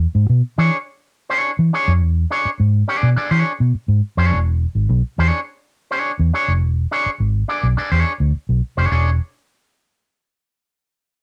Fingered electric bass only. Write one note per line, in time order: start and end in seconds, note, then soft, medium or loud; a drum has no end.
0.15 0.26 G#2 loud
0.29 0.41 B2 loud
0.58 0.69 E3 loud
1.59 1.70 E3 medium
1.88 2.02 F2 medium
2.02 2.24 E2 loud
2.45 muted fingered electric bass stroke soft
2.60 2.82 G#2 medium
3.03 3.14 B2 medium
3.17 muted fingered electric bass stroke soft
3.31 3.42 E3 medium
3.60 3.71 B2 medium
3.74 muted fingered electric bass stroke medium
3.88 4.00 G#2 medium
4.17 4.33 F2 medium
4.31 4.65 E1 loud
4.75 4.86 G#1 medium
4.89 5.01 B1 loud
5.18 5.29 E2 loud
6.19 6.30 E2 medium
6.48 6.63 F1 medium
6.63 6.85 E1 loud
7.06 muted fingered electric bass stroke medium
7.20 7.42 G#1 medium
7.63 7.74 B1 medium
7.92 8.03 E2 medium
8.20 8.31 D2 medium
8.35 muted fingered electric bass stroke soft
8.49 8.60 B1 medium
8.77 8.88 F1 medium
8.92 9.18 E1 medium